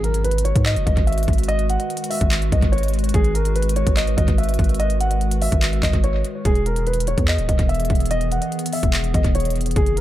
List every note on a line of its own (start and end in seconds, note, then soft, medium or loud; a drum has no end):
0.00 0.53 G#1 loud
0.00 9.72 D#3 medium
0.00 6.41 G#3 medium
0.00 6.41 F#4 medium
0.00 0.21 A#4 medium
0.00 6.41 B4 loud
0.00 impact medium
0.04 closed hi-hat medium
0.14 closed hi-hat medium
0.24 0.41 B4 medium
0.24 closed hi-hat medium
0.31 closed hi-hat medium
0.38 closed hi-hat loud
0.45 0.62 C#5 medium
0.45 closed hi-hat medium
0.56 0.78 G#2 loud
0.56 kick loud
0.56 closed hi-hat medium
0.66 0.83 D#5 medium
0.66 clap loud
0.66 closed hi-hat medium
0.76 0.86 F#1 loud
0.76 closed hi-hat medium
0.86 0.96 G#1 loud
0.86 1.03 D#5 medium
0.86 kick loud
0.86 closed hi-hat medium
0.97 1.27 G#1 loud
0.97 kick medium
0.97 closed hi-hat medium
1.07 1.46 E5 medium
1.07 closed hi-hat medium
1.12 closed hi-hat medium
1.18 closed hi-hat medium
1.23 closed hi-hat medium
1.28 1.78 G#1 loud
1.28 kick loud
1.28 closed hi-hat soft
1.33 closed hi-hat medium
1.38 closed hi-hat medium
1.43 closed hi-hat medium
1.48 1.65 D#5 loud
1.48 closed hi-hat medium
1.59 closed hi-hat medium
1.70 2.08 F#5 medium
1.70 closed hi-hat medium
1.80 closed hi-hat medium
1.90 closed hi-hat medium
1.97 closed hi-hat medium
2.04 closed hi-hat loud
2.10 2.49 E5 medium
2.10 open hi-hat medium
2.21 2.51 G#1 loud
2.21 kick loud
2.21 closed hi-hat medium
2.31 clap loud
2.31 closed hi-hat medium
2.42 closed hi-hat medium
2.52 2.62 B1 loud
2.52 2.69 D#5 medium
2.52 kick loud
2.52 closed hi-hat loud
2.62 3.12 G#1 loud
2.62 kick medium
2.62 closed hi-hat medium
2.72 2.89 C#5 medium
2.72 closed hi-hat medium
2.78 closed hi-hat medium
2.83 closed hi-hat medium
2.88 closed hi-hat medium
2.94 closed hi-hat soft
2.99 closed hi-hat medium
3.04 closed hi-hat medium
3.09 closed hi-hat medium
3.14 3.84 G#1 loud
3.14 3.31 G#4 loud
3.14 kick loud
3.14 closed hi-hat medium
3.24 closed hi-hat medium
3.35 3.51 A#4 medium
3.35 closed hi-hat medium
3.45 closed hi-hat medium
3.56 3.72 B4 medium
3.56 closed hi-hat medium
3.62 closed hi-hat medium
3.69 closed hi-hat loud
3.76 3.93 C#5 medium
3.76 closed hi-hat medium
3.87 4.16 G#1 loud
3.87 kick loud
3.87 closed hi-hat medium
3.97 4.14 D#5 medium
3.97 clap loud
3.97 closed hi-hat medium
4.07 closed hi-hat medium
4.17 4.27 G#1 loud
4.17 4.34 D#5 medium
4.17 kick loud
4.17 closed hi-hat medium
4.28 4.58 G#1 loud
4.28 kick medium
4.28 closed hi-hat medium
4.38 4.77 E5 medium
4.38 closed hi-hat medium
4.43 closed hi-hat medium
4.49 closed hi-hat medium
4.54 closed hi-hat medium
4.59 5.48 G#1 loud
4.59 kick loud
4.59 closed hi-hat soft
4.64 closed hi-hat medium
4.69 closed hi-hat medium
4.74 closed hi-hat medium
4.80 4.96 D#5 medium
4.80 closed hi-hat medium
4.90 closed hi-hat medium
5.00 5.39 F#5 medium
5.00 closed hi-hat medium
5.11 closed hi-hat medium
5.21 closed hi-hat medium
5.31 closed hi-hat loud
5.42 5.81 E5 medium
5.42 open hi-hat medium
5.52 5.82 G#1 loud
5.52 kick loud
5.52 closed hi-hat medium
5.62 clap loud
5.62 closed hi-hat medium
5.73 closed hi-hat soft
5.83 5.93 G#1 loud
5.83 6.00 D#5 medium
5.83 kick loud
5.83 clap loud
5.83 closed hi-hat medium
5.93 6.23 G#1 loud
5.93 kick medium
5.93 closed hi-hat medium
6.04 6.21 C#5 medium
6.04 closed hi-hat medium
6.25 closed hi-hat medium
6.45 7.15 E1 loud
6.45 9.73 E3 medium
6.45 9.73 B3 medium
6.45 10.01 G#4 loud
6.45 6.62 G#4 loud
6.45 kick loud
6.45 closed hi-hat medium
6.55 closed hi-hat medium
6.66 6.83 A#4 medium
6.66 closed hi-hat medium
6.76 closed hi-hat medium
6.87 7.04 B4 medium
6.87 closed hi-hat medium
6.93 closed hi-hat medium
7.00 closed hi-hat loud
7.07 7.24 C#5 medium
7.07 closed hi-hat medium
7.18 7.40 E2 loud
7.18 kick loud
7.18 closed hi-hat medium
7.28 7.45 D#5 medium
7.28 clap loud
7.28 closed hi-hat medium
7.38 7.48 D#1 loud
7.38 closed hi-hat medium
7.49 7.58 E1 loud
7.49 7.65 D#5 medium
7.49 kick medium
7.49 closed hi-hat loud
7.59 7.89 E1 loud
7.59 kick medium
7.59 closed hi-hat medium
7.69 8.08 E5 medium
7.69 closed hi-hat medium
7.74 closed hi-hat medium
7.80 closed hi-hat medium
7.85 closed hi-hat medium
7.90 8.40 E1 loud
7.90 kick loud
7.90 closed hi-hat soft
7.95 closed hi-hat medium
8.00 closed hi-hat medium
8.06 closed hi-hat medium
8.11 8.28 D#5 loud
8.11 closed hi-hat medium
8.21 closed hi-hat medium
8.32 8.71 F#5 medium
8.32 closed hi-hat medium
8.42 closed hi-hat medium
8.52 closed hi-hat medium
8.59 closed hi-hat medium
8.66 closed hi-hat loud
8.73 9.12 E5 medium
8.73 open hi-hat medium
8.83 9.13 E1 loud
8.83 kick loud
8.83 closed hi-hat medium
8.93 clap loud
8.93 closed hi-hat medium
9.04 closed hi-hat medium
9.14 9.24 G#1 loud
9.14 9.31 D#5 medium
9.14 kick loud
9.14 closed hi-hat medium
9.24 9.74 E1 loud
9.24 kick medium
9.24 closed hi-hat medium
9.35 9.52 C#5 medium
9.35 closed hi-hat medium
9.40 closed hi-hat medium
9.45 closed hi-hat medium
9.50 closed hi-hat medium
9.56 closed hi-hat soft
9.61 closed hi-hat medium
9.66 closed hi-hat medium
9.71 closed hi-hat medium
9.76 10.01 F#1 loud
9.76 10.01 F#3 medium
9.76 10.01 C#4 medium
9.76 9.93 G#4 loud
9.76 10.01 A#4 loud
9.76 kick loud
9.76 closed hi-hat medium
9.86 closed hi-hat medium
9.97 10.01 A#4 medium
9.97 closed hi-hat medium